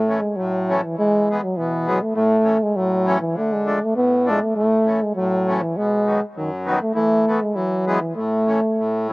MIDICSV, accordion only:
0, 0, Header, 1, 2, 480
1, 0, Start_track
1, 0, Key_signature, 3, "major"
1, 0, Tempo, 601805
1, 762, Time_signature, 2, 2, 24, 8
1, 7280, End_track
2, 0, Start_track
2, 0, Title_t, "Accordion"
2, 0, Program_c, 0, 21
2, 0, Note_on_c, 0, 45, 58
2, 65, Note_on_c, 0, 52, 42
2, 67, Note_on_c, 0, 57, 33
2, 69, Note_on_c, 0, 61, 48
2, 161, Note_off_c, 0, 52, 0
2, 162, Note_off_c, 0, 57, 0
2, 163, Note_off_c, 0, 61, 0
2, 168, Note_off_c, 0, 45, 0
2, 297, Note_on_c, 0, 45, 58
2, 550, Note_on_c, 0, 52, 60
2, 554, Note_on_c, 0, 57, 57
2, 557, Note_on_c, 0, 61, 64
2, 644, Note_off_c, 0, 52, 0
2, 646, Note_off_c, 0, 57, 0
2, 648, Note_off_c, 0, 61, 0
2, 650, Note_off_c, 0, 45, 0
2, 779, Note_on_c, 0, 52, 52
2, 1026, Note_off_c, 0, 52, 0
2, 1035, Note_on_c, 0, 56, 49
2, 1038, Note_on_c, 0, 52, 44
2, 1041, Note_on_c, 0, 59, 59
2, 1124, Note_off_c, 0, 56, 0
2, 1125, Note_off_c, 0, 52, 0
2, 1127, Note_off_c, 0, 59, 0
2, 1262, Note_on_c, 0, 47, 54
2, 1487, Note_on_c, 0, 52, 57
2, 1490, Note_on_c, 0, 56, 64
2, 1495, Note_on_c, 0, 59, 69
2, 1584, Note_off_c, 0, 52, 0
2, 1586, Note_off_c, 0, 56, 0
2, 1588, Note_off_c, 0, 59, 0
2, 1601, Note_off_c, 0, 47, 0
2, 1709, Note_on_c, 0, 45, 71
2, 1943, Note_on_c, 0, 52, 51
2, 1950, Note_on_c, 0, 61, 50
2, 1952, Note_on_c, 0, 57, 37
2, 2050, Note_off_c, 0, 52, 0
2, 2054, Note_off_c, 0, 57, 0
2, 2054, Note_off_c, 0, 61, 0
2, 2063, Note_off_c, 0, 45, 0
2, 2195, Note_on_c, 0, 45, 63
2, 2431, Note_on_c, 0, 52, 68
2, 2439, Note_on_c, 0, 57, 55
2, 2449, Note_on_c, 0, 61, 75
2, 2535, Note_off_c, 0, 52, 0
2, 2539, Note_off_c, 0, 57, 0
2, 2544, Note_off_c, 0, 61, 0
2, 2549, Note_off_c, 0, 45, 0
2, 2672, Note_on_c, 0, 50, 52
2, 2915, Note_on_c, 0, 53, 50
2, 2919, Note_on_c, 0, 57, 51
2, 2925, Note_on_c, 0, 62, 47
2, 3020, Note_off_c, 0, 53, 0
2, 3022, Note_off_c, 0, 57, 0
2, 3025, Note_off_c, 0, 62, 0
2, 3032, Note_off_c, 0, 50, 0
2, 3147, Note_on_c, 0, 45, 54
2, 3397, Note_on_c, 0, 53, 64
2, 3398, Note_on_c, 0, 57, 60
2, 3400, Note_on_c, 0, 62, 62
2, 3505, Note_off_c, 0, 53, 0
2, 3505, Note_off_c, 0, 57, 0
2, 3506, Note_off_c, 0, 62, 0
2, 3513, Note_off_c, 0, 45, 0
2, 3641, Note_on_c, 0, 45, 58
2, 3870, Note_on_c, 0, 52, 39
2, 3876, Note_on_c, 0, 57, 36
2, 3880, Note_on_c, 0, 61, 48
2, 3984, Note_off_c, 0, 52, 0
2, 3987, Note_off_c, 0, 57, 0
2, 3989, Note_off_c, 0, 61, 0
2, 4003, Note_off_c, 0, 45, 0
2, 4119, Note_on_c, 0, 45, 70
2, 4364, Note_on_c, 0, 52, 66
2, 4368, Note_on_c, 0, 57, 64
2, 4373, Note_on_c, 0, 61, 66
2, 4472, Note_off_c, 0, 52, 0
2, 4474, Note_off_c, 0, 57, 0
2, 4477, Note_off_c, 0, 61, 0
2, 4481, Note_off_c, 0, 45, 0
2, 4609, Note_on_c, 0, 47, 55
2, 4835, Note_on_c, 0, 51, 53
2, 4846, Note_on_c, 0, 54, 47
2, 4850, Note_on_c, 0, 59, 49
2, 4943, Note_off_c, 0, 51, 0
2, 4948, Note_off_c, 0, 54, 0
2, 4950, Note_off_c, 0, 59, 0
2, 4959, Note_off_c, 0, 47, 0
2, 5066, Note_on_c, 0, 42, 59
2, 5308, Note_on_c, 0, 51, 73
2, 5312, Note_on_c, 0, 54, 52
2, 5313, Note_on_c, 0, 59, 67
2, 5415, Note_off_c, 0, 51, 0
2, 5417, Note_off_c, 0, 54, 0
2, 5417, Note_off_c, 0, 59, 0
2, 5422, Note_off_c, 0, 42, 0
2, 5541, Note_on_c, 0, 52, 67
2, 5786, Note_off_c, 0, 52, 0
2, 5798, Note_on_c, 0, 52, 47
2, 5801, Note_on_c, 0, 57, 50
2, 5808, Note_on_c, 0, 59, 61
2, 5900, Note_off_c, 0, 52, 0
2, 5901, Note_off_c, 0, 57, 0
2, 5905, Note_off_c, 0, 59, 0
2, 6022, Note_on_c, 0, 52, 59
2, 6264, Note_off_c, 0, 52, 0
2, 6272, Note_on_c, 0, 56, 49
2, 6274, Note_on_c, 0, 59, 77
2, 6276, Note_on_c, 0, 52, 62
2, 6376, Note_off_c, 0, 56, 0
2, 6377, Note_off_c, 0, 59, 0
2, 6378, Note_off_c, 0, 52, 0
2, 6512, Note_on_c, 0, 45, 61
2, 6754, Note_on_c, 0, 52, 40
2, 6758, Note_on_c, 0, 61, 50
2, 6759, Note_on_c, 0, 57, 41
2, 6860, Note_off_c, 0, 52, 0
2, 6862, Note_off_c, 0, 61, 0
2, 6863, Note_off_c, 0, 57, 0
2, 6872, Note_off_c, 0, 45, 0
2, 7003, Note_on_c, 0, 45, 64
2, 7253, Note_on_c, 0, 52, 57
2, 7280, Note_off_c, 0, 45, 0
2, 7280, Note_off_c, 0, 52, 0
2, 7280, End_track
0, 0, End_of_file